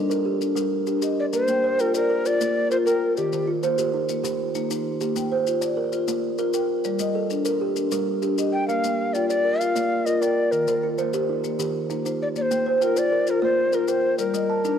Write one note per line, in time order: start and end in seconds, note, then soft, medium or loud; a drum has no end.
0.00 0.26 D4 medium
0.00 0.41 D#4 medium
0.00 0.26 A4 medium
0.00 0.11 D#5 medium
0.10 0.41 A#4 medium
0.10 maracas medium
0.25 0.72 G4 medium
0.41 0.72 D4 medium
0.41 maracas medium
0.55 0.87 G3 medium
0.55 1.03 G4 medium
0.55 1.02 A#4 medium
0.55 maracas medium
0.87 1.18 D4 medium
0.87 1.01 G4 medium
0.87 maracas medium
1.02 1.33 G4 medium
1.02 1.49 D#5 medium
1.02 maracas medium
1.20 1.26 D5 medium
1.33 1.64 A#3 medium
1.33 1.64 A#4 medium
1.33 1.82 C5 loud
1.33 maracas medium
1.48 1.79 A#3 medium
1.48 1.95 G5 medium
1.48 maracas medium
1.64 2.10 C5 medium
1.79 2.10 F4 medium
1.79 1.95 A#4 loud
1.79 2.25 G5 medium
1.79 maracas medium
1.94 2.28 A#4 loud
1.94 2.25 D5 medium
1.94 2.41 D5 medium
1.94 maracas medium
2.10 2.56 A#4 medium
2.26 2.56 F4 medium
2.26 2.71 D5 loud
2.26 maracas medium
2.41 2.71 A#3 medium
2.41 2.87 D5 medium
2.41 maracas medium
2.71 3.02 F4 medium
2.71 2.86 A#4 medium
2.71 2.77 C5 medium
2.71 maracas medium
2.85 3.14 A#4 medium
2.85 3.17 A#4 medium
2.85 3.33 G5 medium
2.85 maracas medium
3.17 3.48 D#3 medium
3.17 3.49 G4 medium
3.17 3.48 D5 medium
3.17 maracas medium
3.33 3.63 D#3 medium
3.33 3.79 C5 medium
3.33 maracas medium
3.47 3.94 F4 medium
3.63 3.94 A#3 medium
3.63 4.09 C5 medium
3.63 maracas medium
3.78 4.09 G4 medium
3.78 maracas medium
3.94 4.40 D#4 medium
4.09 4.40 A#3 medium
4.09 maracas medium
4.24 4.55 D#3 medium
4.24 4.70 G4 medium
4.24 maracas medium
4.55 4.86 A#3 medium
4.55 4.69 D#4 medium
4.55 maracas medium
4.71 5.01 D#4 medium
4.71 5.16 C5 medium
4.71 maracas medium
5.01 5.32 A#3 medium
5.01 5.32 G4 medium
5.01 maracas medium
5.16 5.47 A#3 medium
5.16 5.62 G5 medium
5.16 maracas medium
5.32 5.78 C5 medium
5.47 5.78 F4 medium
5.47 maracas medium
5.61 5.92 D5 medium
5.61 6.08 D5 medium
5.61 maracas medium
5.77 6.23 A#4 medium
5.92 6.23 F4 medium
5.92 maracas medium
6.08 6.39 A#3 medium
6.08 6.54 D5 medium
6.08 maracas medium
6.38 6.69 F4 medium
6.38 6.53 A#4 medium
6.38 maracas medium
6.53 6.85 A#4 medium
6.53 7.00 G5 medium
6.53 maracas medium
6.84 7.16 G3 medium
6.84 7.15 D5 medium
6.84 maracas medium
6.99 7.31 G3 medium
6.99 7.46 D#5 medium
6.99 maracas medium
7.15 7.61 A4 medium
7.30 7.61 D4 medium
7.30 maracas medium
7.45 7.76 A#4 medium
7.45 7.92 A#4 medium
7.45 maracas medium
7.61 8.07 G4 medium
7.76 8.07 D4 medium
7.76 maracas medium
7.91 8.23 G3 medium
7.91 8.38 A#4 medium
7.91 maracas medium
8.22 8.53 D4 medium
8.22 8.37 G4 medium
8.22 maracas medium
8.38 8.69 G4 medium
8.38 8.84 D#5 medium
8.38 maracas medium
8.53 8.67 G5 medium
8.68 8.99 A#3 medium
8.68 8.99 A#4 medium
8.68 9.15 F5 loud
8.68 maracas medium
8.84 9.15 A#3 medium
8.84 9.30 G5 medium
8.84 maracas medium
9.13 9.45 F4 medium
9.13 9.28 D5 medium
9.13 9.61 G5 medium
9.13 maracas medium
9.29 9.61 D5 loud
9.29 9.61 D5 medium
9.29 9.76 D5 medium
9.29 maracas medium
9.45 9.91 A#4 medium
9.60 9.91 F4 medium
9.60 10.07 F5 loud
9.60 maracas medium
9.76 10.06 A#3 medium
9.76 10.22 D5 medium
9.76 maracas medium
10.06 10.37 F4 medium
10.06 10.20 A#4 medium
10.06 10.22 D#5 medium
10.06 maracas medium
10.21 10.52 A#4 medium
10.21 10.53 D5 medium
10.21 10.68 G5 medium
10.21 maracas medium
10.52 10.83 D#3 medium
10.52 10.86 A#4 medium
10.52 10.83 D5 medium
10.52 maracas medium
10.68 10.98 D#3 medium
10.68 11.14 C5 medium
10.68 maracas medium
10.83 11.29 F4 medium
10.98 11.29 A#3 medium
10.98 11.44 C5 medium
10.98 maracas medium
11.13 11.59 G4 medium
11.13 11.44 G4 medium
11.13 maracas medium
11.29 11.75 D#4 medium
11.44 11.75 A#3 medium
11.44 maracas medium
11.59 11.90 D#3 medium
11.59 12.05 G4 medium
11.59 maracas medium
11.90 12.21 A#3 medium
11.90 12.04 D#4 medium
11.90 maracas medium
12.05 12.36 D#4 medium
12.05 12.51 C5 medium
12.05 maracas medium
12.22 12.28 D5 loud
12.36 12.67 A#3 medium
12.36 12.43 D5 medium
12.36 maracas medium
12.42 12.78 C5 loud
12.51 12.82 A#3 medium
12.51 12.97 G5 medium
12.51 maracas medium
12.66 13.12 C5 medium
12.78 13.12 F4 medium
12.78 12.85 C5 medium
12.78 13.28 G5 medium
12.78 maracas medium
12.84 13.00 A#4 loud
12.97 13.27 D5 medium
12.97 13.43 D5 medium
12.97 13.32 D5 loud
12.97 maracas medium
13.12 13.58 A#4 medium
13.27 13.58 F4 medium
13.27 13.43 A#4 loud
13.27 maracas medium
13.42 13.73 A#3 medium
13.42 13.76 C5 medium
13.42 13.88 D5 medium
13.73 14.05 F4 medium
13.73 13.87 A#4 medium
13.73 13.91 A#4 medium
13.73 maracas medium
13.88 14.19 A#4 medium
13.88 14.18 C5 medium
13.88 14.35 G5 medium
13.88 maracas medium
14.18 14.50 G3 medium
14.18 14.79 A#4 medium
14.18 14.50 D5 medium
14.18 maracas medium
14.34 14.65 G3 medium
14.34 14.79 D#5 medium
14.34 maracas medium
14.50 14.79 A5 medium
14.65 14.79 D4 medium
14.65 14.79 D#4 medium
14.65 maracas medium